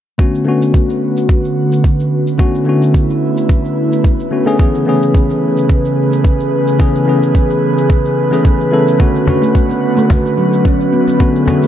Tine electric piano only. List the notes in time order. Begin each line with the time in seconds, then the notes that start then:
0.18 D3 A3 B3 C#4 F#4
0.45 D3 A3 B3 C#4
0.49 F#4
2.38 D3 A3 B3 C#4 F#4
2.65 D3 A3 B3 C#4 F#4
4.31 D3 A3 B3 C#4 F#4
4.45 D3 A3 B3 C#4 G#4
4.59 E3 A3 B3 C#4 G#4
4.85 E3 A3 B3 C#4 G#4
6.79 E3 A3 B3 C#4 G#4
7.05 E3 A3 B3 C#4 G#4
8.31 E3 A3 B3 C#4 G#4
8.71 E3 A3 B3 C#4 A4
8.99 D3 A3 B3 C#4 F#4
9.25 D3 A3 B3 C#4
9.29 F#4
11.19 D3 A3 B3 C#4 F#4
11.45 D3 A3 B3 C#4
11.49 F#4